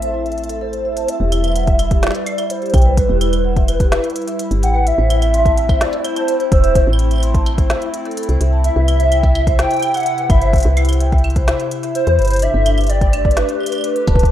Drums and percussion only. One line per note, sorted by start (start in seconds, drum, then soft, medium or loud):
0.02 closed hi-hat medium
0.26 closed hi-hat soft
0.32 closed hi-hat soft
0.38 closed hi-hat soft
0.44 closed hi-hat soft
0.49 closed hi-hat medium
0.73 closed hi-hat soft
0.97 closed hi-hat medium
1.08 closed hi-hat medium
1.32 closed hi-hat medium
1.32 claves medium
1.44 closed hi-hat medium
1.44 claves medium
1.48 claves soft
1.52 closed hi-hat medium
1.52 claves soft
1.56 claves soft
1.59 claves soft
1.63 closed hi-hat soft
1.63 claves soft
1.67 kick medium
1.79 closed hi-hat medium
1.79 claves medium
1.91 kick medium
1.91 closed hi-hat medium
2.03 snare loud
2.03 closed hi-hat medium
2.07 snare medium
2.11 snare medium
2.15 closed hi-hat soft
2.26 closed hi-hat medium
2.26 claves medium
2.38 closed hi-hat medium
2.38 claves medium
2.50 closed hi-hat medium
2.62 closed hi-hat soft
2.66 closed hi-hat soft
2.70 closed hi-hat soft
2.74 kick loud
2.74 closed hi-hat medium
2.74 claves soft
2.78 closed hi-hat soft
2.82 closed hi-hat soft
2.97 kick medium
2.97 closed hi-hat medium
3.21 closed hi-hat medium
3.21 claves medium
3.33 closed hi-hat medium
3.33 claves medium
3.56 kick medium
3.56 closed hi-hat soft
3.68 closed hi-hat medium
3.68 claves medium
3.80 kick medium
3.80 closed hi-hat medium
3.92 snare loud
3.92 closed hi-hat medium
4.04 closed hi-hat soft
4.10 closed hi-hat soft
4.16 closed hi-hat medium
4.22 closed hi-hat soft
4.28 closed hi-hat medium
4.39 closed hi-hat medium
4.51 closed hi-hat soft
4.63 closed hi-hat medium
4.87 closed hi-hat medium
5.10 closed hi-hat medium
5.10 claves medium
5.22 closed hi-hat medium
5.22 claves medium
5.34 closed hi-hat medium
5.46 kick medium
5.46 closed hi-hat soft
5.57 closed hi-hat medium
5.69 kick medium
5.69 closed hi-hat medium
5.69 claves medium
5.81 snare loud
5.81 closed hi-hat medium
5.93 closed hi-hat soft
6.04 closed hi-hat medium
6.04 claves medium
6.16 closed hi-hat medium
6.16 claves medium
6.28 closed hi-hat medium
6.40 closed hi-hat soft
6.52 kick loud
6.52 closed hi-hat medium
6.64 closed hi-hat medium
6.75 kick loud
6.75 closed hi-hat medium
6.93 claves medium
6.99 closed hi-hat medium
7.11 closed hi-hat medium
7.11 claves soft
7.13 claves soft
7.16 claves soft
7.18 claves soft
7.20 closed hi-hat medium
7.20 claves soft
7.34 kick medium
7.34 closed hi-hat soft
7.46 closed hi-hat medium
7.46 claves medium
7.58 kick medium
7.58 closed hi-hat medium
7.70 snare loud
7.70 closed hi-hat medium
7.82 closed hi-hat soft
7.94 closed hi-hat medium
8.05 closed hi-hat soft
8.11 closed hi-hat soft
8.17 closed hi-hat medium
8.23 closed hi-hat soft
8.29 closed hi-hat soft
8.41 closed hi-hat medium
8.64 closed hi-hat medium
8.88 closed hi-hat medium
8.88 claves medium
9.00 closed hi-hat medium
9.12 closed hi-hat medium
9.12 claves medium
9.23 kick medium
9.23 closed hi-hat soft
9.35 closed hi-hat medium
9.35 claves medium
9.47 kick medium
9.47 closed hi-hat medium
9.59 snare loud
9.59 closed hi-hat medium
9.71 closed hi-hat soft
9.74 closed hi-hat soft
9.77 closed hi-hat soft
9.79 closed hi-hat soft
9.82 closed hi-hat medium
9.82 claves soft
9.85 closed hi-hat soft
9.88 closed hi-hat soft
9.91 closed hi-hat soft
9.94 closed hi-hat soft
9.94 claves medium
9.97 closed hi-hat soft
10.00 closed hi-hat soft
10.03 closed hi-hat soft
10.06 closed hi-hat medium
10.18 closed hi-hat soft
10.30 kick loud
10.30 closed hi-hat medium
10.30 claves soft
10.42 closed hi-hat medium
10.53 kick medium
10.53 closed hi-hat soft
10.56 closed hi-hat soft
10.58 closed hi-hat soft
10.60 closed hi-hat medium
10.63 closed hi-hat medium
10.77 closed hi-hat medium
10.77 claves medium
10.85 closed hi-hat medium
10.89 closed hi-hat medium
10.89 claves medium
10.93 closed hi-hat medium
11.00 closed hi-hat medium
11.12 kick medium
11.12 closed hi-hat soft
11.18 closed hi-hat soft
11.24 closed hi-hat soft
11.24 claves medium
11.30 closed hi-hat soft
11.36 kick medium
11.36 closed hi-hat medium
11.48 snare loud
11.48 closed hi-hat medium
11.60 closed hi-hat soft
11.71 closed hi-hat medium
11.83 closed hi-hat medium
11.95 closed hi-hat medium
12.07 closed hi-hat soft
12.19 closed hi-hat soft
12.22 closed hi-hat soft
12.25 closed hi-hat soft
12.28 closed hi-hat medium
12.31 closed hi-hat medium
12.33 closed hi-hat medium
12.36 closed hi-hat medium
12.39 closed hi-hat medium
12.42 closed hi-hat medium
12.66 closed hi-hat medium
12.66 claves medium
12.78 closed hi-hat soft
12.78 claves medium
12.81 closed hi-hat soft
12.84 closed hi-hat soft
12.87 closed hi-hat soft
12.90 closed hi-hat medium
13.01 kick medium
13.01 closed hi-hat soft
13.13 closed hi-hat medium
13.13 claves medium
13.25 kick medium
13.31 closed hi-hat medium
13.37 snare loud
13.37 closed hi-hat medium
13.49 closed hi-hat soft
13.60 claves soft
13.63 closed hi-hat medium
13.63 claves soft
13.66 claves soft
13.69 closed hi-hat medium
13.69 claves soft
13.72 claves soft
13.75 claves soft
13.78 claves soft
13.81 closed hi-hat medium
13.81 claves soft
13.96 closed hi-hat soft
14.07 kick loud
14.07 closed hi-hat medium
14.15 kick medium
14.15 closed hi-hat medium
14.23 kick medium
14.23 closed hi-hat soft